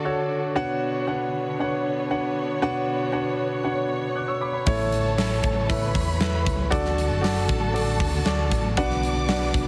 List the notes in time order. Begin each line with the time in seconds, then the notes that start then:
Already playing: D3 D4 F#4 A4 D5
0.05 F#4 A4 C#5
0.56 B2 B3 D4 F#4 B4 C#5 F#5
1.07 D4 F#4 B4 C#5 F#5
1.59 D4 F#4 B4 C#5 F#5
2.10 D4 F#4 B4 C#5 F#5
2.62 B2 D4 F#4 B4 C#5 F#5
3.12 D4 F#4 B4 C#5 F#5
3.64 D4 F#4 B4 C#5 F#5
4.15 D6 F#6
4.28 C#6 E6
4.41 B5 D6
4.53 B5
4.66 A1 A2 E3 A3 E4 A4 C#5 A5, kick, open hi-hat
4.92 hi-hat pedal, open hi-hat
5.18 E4 A4 C#5, snare, hi-hat pedal, open hi-hat
5.43 A1, kick, hi-hat pedal, open hi-hat
5.69 E4 A4 B4 B5, kick, hi-hat pedal, open hi-hat
5.95 E2, kick, hi-hat pedal, open hi-hat
6.19 E4 A4 B4, snare, hi-hat pedal, open hi-hat
6.46 C#2, kick, hi-hat pedal, open hi-hat
6.70 D2 D3 D4 F#4 A4 D5 A5, kick, hi-hat pedal, open hi-hat
6.85 snare
6.98 hi-hat pedal, open hi-hat
7.10 F#1
7.21 F#4 A4 D5, snare, hi-hat pedal, open hi-hat
7.49 A1, kick, hi-hat pedal, open hi-hat
7.74 F#4 A4 D5, hi-hat pedal, open hi-hat
8.00 D2, kick, hi-hat pedal, open hi-hat
8.25 D2 F#4 A4 D5, snare, hi-hat pedal, open hi-hat
8.51 A1, kick, hi-hat pedal, open hi-hat
8.77 B1 B2 B3 D4 F#4 B4 D5 F#5 D6, kick, hi-hat pedal, open hi-hat
8.90 snare
9.03 hi-hat pedal, open hi-hat
9.29 D4 F#4 B4 D5 F#5, snare, hi-hat pedal, open hi-hat
9.54 B1, kick, hi-hat pedal, open hi-hat